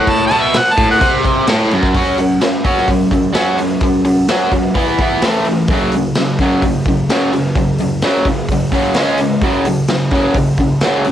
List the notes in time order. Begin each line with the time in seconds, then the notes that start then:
Already playing: A2 F#5
0.07 A5, kick, crash
0.27 A5
0.31 B2, crash
0.41 E5
0.54 muted overdriven electric guitar stroke, snare, crash
0.58 F#5
0.73 A5
0.77 A2, kick, crash
0.91 F#5
1.01 C3, kick, crash
1.24 kick, crash
1.47 A2, snare, crash
1.71 F#2, crash
1.83 kick, snare
1.94 F#3 C#4 F#4, kick, open hi-hat
2.18 F#3 C#4, open hi-hat
2.41 F#3 C#4, snare, open hi-hat
2.65 F#3 C#4 F#4, kick, open hi-hat
2.78 snare
2.88 F#3 C#4, kick, open hi-hat
3.11 F#3 C#4, kick, open hi-hat
3.33 F#3 C#4 F#4, snare, open hi-hat
3.58 F#3 C#4, open hi-hat
3.81 F#3 C#4, kick, open hi-hat
4.05 F#3 C#4, open hi-hat
4.28 F#3 C#4 F#4, snare, open hi-hat
4.52 F#3 C#4, kick, open hi-hat
4.75 E3 B3 E4, kick, open hi-hat
4.99 E3 B3 E4, kick, open hi-hat
5.22 A2 E3 A3, snare, open hi-hat
5.45 A2 E3, open hi-hat
5.68 F#2, kick, open hi-hat
5.72 C#3 F#3
5.92 F#2, open hi-hat
5.97 C#3
6.15 F#2, snare, open hi-hat
6.19 C#3
6.39 F#2 C#3 F#3, kick, open hi-hat
6.62 F#2 C#3, kick, open hi-hat
6.86 F#2 C#3, kick, open hi-hat
7.09 F#2 C#3 F#3, snare, open hi-hat
7.33 F#2 C#3, open hi-hat
7.55 F#2 C#3, kick, open hi-hat
7.78 F#2 C#3, open hi-hat
8.02 F#2 C#3 F#3, snare, open hi-hat
8.25 F#2 C#3, kick, open hi-hat
8.48 F#2 C#3, kick, open hi-hat
8.72 F#2 C#3 F#3, kick, open hi-hat
8.94 C#3 G#3, snare, open hi-hat
8.98 C#4
9.18 C#3 G#3, open hi-hat
9.41 F#2 C#3, kick, open hi-hat
9.45 F#3
9.65 F#2 C#3, open hi-hat
9.88 F#2 C#3, snare, open hi-hat
10.11 F#2 C#3 F#3, kick, open hi-hat
10.34 F#2 C#3, kick, open hi-hat
10.57 F#2 C#3, kick, open hi-hat
10.81 F#2 C#3, snare, open hi-hat
10.85 F#3
11.05 F#2 C#3, open hi-hat